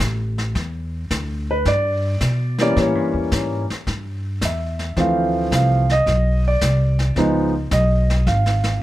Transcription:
0.00 upright bass A1, kick, snare, hi-hat pedal
0.38 snare
0.55 upright bass E2, brush sweep, kick, snare
1.10 upright bass D2, kick, snare, hi-hat pedal
1.51 grand piano B4
1.65 upright bass G2, grand piano D5, brush sweep, kick, snare
2.21 upright bass B2, kick, snare, hi-hat pedal
2.58 grand piano E3 G3 A#3 C#4 D5, snare
2.76 upright bass A2, grand piano E3 G3 A#3 C#4, brush sweep, kick, snare
2.82 grand piano C#5
2.95 upright bass G2
3.14 upright bass E2
3.32 upright bass G#2, kick, snare, hi-hat pedal
3.70 muted upright bass stroke, snare
3.87 upright bass G2, brush sweep, kick, snare
4.41 upright bass E2, grand piano E5, kick, snare, hi-hat pedal
4.79 snare
4.97 upright bass D2, grand piano E3 F3 A3 C4 F5, brush sweep, kick, snare
5.51 upright bass C2, grand piano F5, kick, snare, hi-hat pedal
5.89 grand piano D#5, snare
6.06 upright bass B1, brush sweep, kick, snare
6.48 grand piano D5
6.61 upright bass C2, kick, snare, hi-hat pedal
6.99 snare
7.16 upright bass C#2, grand piano F3 G#3 B3 D#4, brush sweep, kick, snare
7.71 upright bass B1, grand piano D#5, kick, snare, hi-hat pedal
8.10 snare
8.27 upright bass G#1, grand piano F5, brush sweep, kick, snare
8.46 snare
8.64 snare

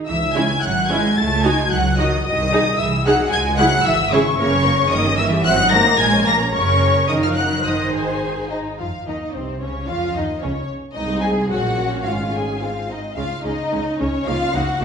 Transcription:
0.08 double bass section C#2, cello section E3, violin section E5 E6
0.35 cello section G#3, viola section C#4 E4, violin section G#5 G#6
0.61 double bass section G#1, cello section F#3, violin section F#5 F#6
0.88 cello section G#3, viola section C#4 E4, violin section G#5 G#6
1.17 double bass section C#2, cello section A3, violin section A5 A6
1.44 cello section G#3, viola section D#4 F#4, violin section G#5 G#6
1.71 double bass section C#2, cello section F#3, violin section F#5 F#6
1.98 cello section D#3, viola section D#4 F#4, violin section D#5 D#6
2.24 double bass section C2, cello section D#3, violin section D#5 D#6
2.52 viola section D#4 G#4
2.78 double bass section C2, cello section E3, violin section E5 E6
3.05 cello section F#3, viola section D#4 G#4, violin section F#5 F#6
3.30 double bass section C#2, cello section G#3, violin section G#5 G#6
3.57 cello section F#3, viola section E4 G#4, violin section F#5 F#6
3.85 double bass section G#1, cello section E3, violin section E5 E6
4.12 cello section C#3, viola section E4 G#4, violin section C#5 C#6
4.38 double bass section F#1, cello section C#3, viola section A#3 A#4, violin section C#5 C#6
4.53 viola section C#4 C#5
4.65 viola section A#3 A#4
4.80 viola section C#4 C#5
4.91 double bass section G1, cello section D#3, viola section A#3 A#4, violin section D#5 D#6
5.06 viola section C#4 G4
5.18 cello section E3, viola section A#3 A#4, violin section E5 E6
5.33 viola section C#4 G4
5.45 double bass section G#1, cello section F#3, viola section C4 C5, violin section F#5 F#6
5.59 viola section D#4 D#5
5.71 cello section A#3, viola section C4 C5, violin section A#5 A#6
5.85 viola section D#4 D#5
5.99 double bass section A#1, cello section G#3, viola section A#3 A#4, violin section G#5 G#6
6.13 viola section C#4 C#5
6.26 cello section A#3, viola section A#3 A#4, violin section A#5 A#6
6.40 viola section C#4 C#5
6.53 double bass section F#1, cello section C#3, viola section C#4 A#4, violin section C#5 C#6
7.08 double bass section F#1, cello section D#3, viola section D#4 A#4, violin section D#5 D#6
7.23 cello section F3, violin section F5 F6
7.36 cello section F#3, violin section F#5 F#6
7.65 double bass section G#1, cello section D#3, viola section D#4 C5, violin section D#5 D#6
7.94 violin section G#4 G#5
8.50 violin section D#4 D#5
8.79 double bass section F2, cello section F3, violin section F4 F5, viola section F4
9.07 double bass section D#2, cello section D#3, viola section D#4, violin section D#4 D#5
9.34 double bass section C2, cello section C3, viola section C4, violin section C4 C5
9.62 double bass section C#2, cello section C#3, viola section C#4, violin section C#4 C#5
9.88 double bass section F2, cello section F3, viola section F4, violin section F4 F5
10.15 double bass section D#2, cello section D#3, viola section D#4, violin section D#4 D#5
10.41 double bass section C#2, cello section C#3, viola section C#4, violin section C#4 C#5
10.95 cello section C2, double bass section C2, viola section G#3 C4, violin section D#4 D#5
11.21 violin section G#4 G#5
11.49 double bass section A#1, cello section A#2, viola section F#3 C#4, violin section F#4 F#5
12.03 double bass section G#1, cello section G#2, viola section G#3, violin section F4 F5
12.33 violin section G#4 G#5
12.60 viola section C4, violin section F4 F5
12.90 violin section D#4 D#5
13.16 double bass section C#2, cello section C#3, viola section G#3 C#4, violin section F4 F5
13.43 double bass section C#2, cello section C#3, viola section G#3 C#4, violin section D#4 D#5
13.72 double bass section C#2, cello section C#3, viola section G#3 C#4
13.99 double bass section C#2, cello section C#3, viola section G#3 C#4, violin section C#4 C#5
14.26 double bass section C#2, cello section C#3, viola section A#3 D#4, violin section F4 F5
14.54 double bass section C#2, cello section C#3, viola section A#3 D#4, violin section F#4 F#5
14.81 cello section C#3, viola section A#3 D#4

